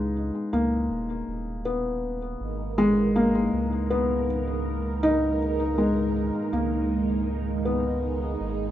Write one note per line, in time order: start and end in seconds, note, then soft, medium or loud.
0.00 0.32 C#2 medium
0.00 0.49 G#3 medium
0.00 5.03 D#4 medium
0.53 0.90 C#2 medium
0.53 1.62 A#3 medium
0.90 1.24 D#1 medium
1.28 2.37 D#1 medium
1.65 2.74 B3 medium
2.40 3.49 G#1 medium
2.40 8.71 G#3 medium
2.40 8.71 D#4 medium
2.40 8.36 A#4 medium
2.78 3.14 G#3 loud
3.16 3.87 A#3 medium
3.53 6.32 C#2 medium
3.90 4.26 B3 medium
5.03 5.39 D#4 loud
5.78 6.49 G#3 medium
6.53 8.37 C#2 medium
6.53 7.62 A#3 medium
7.65 8.71 B3 medium
8.40 8.71 G#1 loud
8.40 8.71 G#4 medium